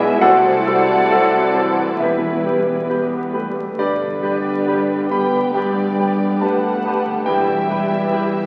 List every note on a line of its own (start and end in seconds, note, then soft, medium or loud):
0.00 0.21 B1 loud
0.00 0.23 B1 medium
0.00 0.21 B2 medium
0.00 0.25 B2 medium
0.00 0.19 G#3 medium
0.00 0.20 G#3 loud
0.00 0.24 G#3 medium
0.00 0.23 B3 medium
0.00 0.24 B3 medium
0.00 0.18 E4 medium
0.00 0.23 E4 medium
0.00 0.87 E4 medium
0.00 0.21 B4 medium
0.00 0.23 D5 medium
0.00 0.24 D5 medium
0.00 0.19 E5 medium
0.00 0.21 E5 loud
0.00 0.16 G#5 loud
0.00 0.21 G#5 loud
0.19 1.96 C2 medium
0.19 0.65 C2 medium
0.19 1.95 C3 medium
0.19 2.03 C3 medium
0.19 0.64 A3 medium
0.19 1.95 E4 medium
0.19 1.98 F#4 medium
0.19 1.99 A4 medium
0.19 0.38 A4 medium
0.19 1.08 C5 medium
0.19 1.96 D5 loud
0.19 1.99 F#5 loud
0.19 1.95 F#5 loud
0.23 0.39 C5 medium
0.44 1.75 C4 medium
0.65 1.09 G3 medium
0.65 1.06 A3 soft
0.65 1.54 A3 medium
0.65 1.06 E4 medium
0.65 0.82 A4 medium
0.65 0.83 C5 medium
0.65 1.06 C5 medium
0.89 1.32 E4 medium
1.09 1.54 F#3 medium
1.09 1.51 A3 soft
1.09 1.51 E4 soft
1.09 1.27 A4 medium
1.09 1.97 C5 medium
1.09 2.03 C5 medium
1.09 1.27 C5 medium
1.09 1.51 C5 medium
1.33 3.81 E4 soft
1.55 2.00 E3 medium
1.55 1.95 A3 soft
1.55 2.03 A3 soft
1.55 1.96 E4 soft
1.55 1.72 A4 medium
1.55 1.96 C5 soft
1.55 1.72 C5 soft
1.77 2.03 C4 soft
1.97 3.54 E1 medium
1.97 3.29 E2 medium
1.97 3.54 E2 medium
1.97 2.43 E2 medium
1.97 3.81 E2 medium
1.97 2.87 E3 medium
1.97 2.80 G3 medium
1.97 2.78 E4 medium
1.97 2.17 G4 soft
1.97 2.89 B4 medium
1.97 2.16 B4 medium
1.97 3.55 B4 medium
1.97 2.86 E5 medium
1.97 2.85 E5 medium
2.22 3.55 B2 soft
2.45 2.85 G3 soft
2.45 3.32 G3 soft
2.45 2.61 G4 soft
2.45 2.85 G4 soft
2.45 2.85 B4 soft
2.45 2.62 B4 soft
2.67 3.10 G4 soft
2.88 3.29 G3 soft
2.88 3.30 B3 medium
2.88 6.80 B3 soft
2.88 3.05 G4 soft
2.88 3.29 G4 soft
2.88 3.29 B4 soft
2.88 3.07 B4 soft
3.11 4.44 G4 soft
3.32 3.74 G3 soft
3.32 4.22 G3 soft
3.32 3.77 A3 medium
3.32 3.49 G4 soft
3.32 3.74 G4 soft
3.32 3.50 B4 soft
3.32 3.74 B4 soft
3.56 3.82 B2 soft
3.76 4.57 G1 medium
3.76 4.56 G2 medium
3.76 4.21 G2 medium
3.76 5.53 G2 medium
3.76 5.05 D3 medium
3.76 3.94 G4 soft
3.76 5.06 B4 medium
3.76 3.94 B4 medium
3.76 5.06 D5 medium
3.76 5.07 D5 medium
4.01 5.32 D3 soft
4.22 5.09 G3 medium
4.22 4.63 G3 soft
4.22 5.09 G3 soft
4.22 5.09 B3 medium
4.22 5.08 G4 soft
4.22 4.38 G4 medium
4.22 4.63 G4 soft
4.22 5.08 B4 soft
4.22 4.63 B4 soft
4.22 4.40 B4 medium
4.46 4.88 G4 soft
4.67 5.44 G1 medium
4.67 5.44 G2 medium
4.67 5.06 G3 soft
4.67 4.83 G4 soft
4.67 5.07 G4 soft
4.67 4.83 B4 soft
4.67 5.07 B4 soft
4.67 8.46 D5 medium
4.90 6.19 G4 soft
5.10 5.75 G3 soft
5.10 5.50 G3 soft
5.10 5.97 G3 medium
5.10 5.54 B3 medium
5.10 5.97 B3 soft
5.10 5.96 G4 medium
5.10 5.27 G4 medium
5.10 5.51 G4 soft
5.10 5.96 B4 medium
5.10 5.28 B4 soft
5.10 5.51 B4 soft
5.10 5.54 G5 medium
5.10 5.54 B5 medium
5.10 5.51 B5 medium
5.33 5.97 D3 soft
5.52 6.31 G1 medium
5.52 5.96 D2 soft
5.52 6.31 G2 medium
5.52 7.29 G2 soft
5.52 6.40 G3 medium
5.52 5.72 G4 medium
5.52 5.71 B4 medium
5.52 6.41 D5 medium
5.52 6.41 G5 medium
5.52 6.37 G5 medium
5.76 6.83 G3 soft
5.98 7.04 D3 soft
5.98 6.37 G3 soft
5.98 6.82 G3 medium
5.98 6.83 B3 medium
5.98 6.82 G4 soft
5.98 6.14 G4 soft
5.98 6.38 G4 soft
5.98 6.82 B4 medium
5.98 6.15 B4 soft
5.98 6.38 B4 soft
6.20 6.62 G4 soft
6.41 7.16 G1 medium
6.41 7.16 G2 medium
6.41 6.80 G3 soft
6.41 7.26 A3 medium
6.41 6.58 G4 soft
6.41 6.80 G4 soft
6.41 6.58 B4 soft
6.41 6.80 B4 soft
6.41 7.26 F#5 medium
6.41 7.24 A5 medium
6.41 7.22 A5 medium
6.63 7.88 G4 soft
6.84 7.67 G3 soft
6.84 7.25 G3 soft
6.84 7.22 G3 soft
6.84 7.25 B3 medium
6.84 7.25 G4 medium
6.84 7.22 G4 soft
6.84 7.02 G4 medium
6.84 7.25 B4 medium
6.84 7.01 B4 medium
6.84 7.23 B4 soft
7.05 7.29 D3 soft
7.26 8.01 E1 medium
7.26 7.67 E2 medium
7.26 8.46 E2 medium
7.26 8.01 E2 medium
7.26 8.46 G3 medium
7.26 7.68 G3 soft
7.26 7.68 E4 soft
7.26 7.66 G4 soft
7.26 7.43 G4 medium
7.26 7.66 B4 soft
7.26 7.43 B4 medium
7.26 8.46 E5 medium
7.26 8.46 G5 medium
7.47 8.46 B2 soft
7.67 8.46 G3 soft
7.67 8.07 G3 soft
7.67 8.46 E4 medium
7.67 8.46 G4 soft
7.67 7.84 G4 soft
7.67 8.08 G4 soft
7.67 8.46 B4 soft
7.67 7.86 B4 soft
7.67 8.08 B4 soft
7.89 8.31 G4 soft
8.11 8.46 E1 medium
8.11 8.46 E2 medium
8.11 8.46 G3 soft
8.11 8.46 G4 soft
8.11 8.28 G4 medium
8.11 8.46 B4 medium
8.11 8.29 B4 soft
8.32 8.46 G4 soft